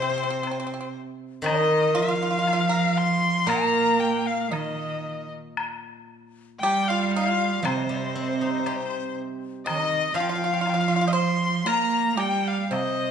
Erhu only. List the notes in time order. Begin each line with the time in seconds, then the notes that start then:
Already playing: C5
1.46 D#5
1.97 F5
2.98 C6
3.49 A#5
4.00 G5
4.27 F5
4.53 D#5
6.60 G5
6.88 F5
7.14 F5
7.66 C5
9.66 D#5
10.15 F5
11.16 C6
11.67 A#5
12.20 G5
12.48 F5
12.73 D#5